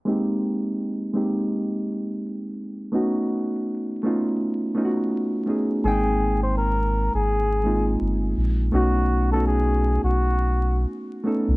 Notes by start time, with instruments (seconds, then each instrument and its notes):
0.05 reed electric piano G#3 A#3 C4 D#4 G4
1.13 reed electric piano G#3 A#3 C4 D#4 G4
2.92 reed electric piano A3 B3 C#4 D#4 F#4
4.03 reed electric piano A3 B3 C#4 D#4 F4
4.75 reed electric piano A3 B3 C#4 D#4 F4
4.85 reed electric piano F#4
5.46 reed electric piano A3 B3 C#4 D#4 G#4
5.84 sub bass G#1, reed electric piano G#3 A#3 C4 D#4 G5, flugelhorn G#4
6.43 flugelhorn C5
6.58 flugelhorn A#4
7.14 sub bass G#1, flugelhorn G#4
7.63 reed electric piano G#3 A#3 C4 D#4 F4
8.01 sub bass G1
8.37 sub bass A#1
8.72 sub bass B1, reed electric piano A3 B3 C#4 D#4 F#4, flugelhorn F#4
9.32 reed electric piano A3 B3 C#4 D#4, flugelhorn A4
9.36 reed electric piano F#4
9.46 flugelhorn G#4
10.03 sub bass B1, flugelhorn F#4
11.24 reed electric piano A3 B3 C#4 D#4 A4
11.48 sub bass C2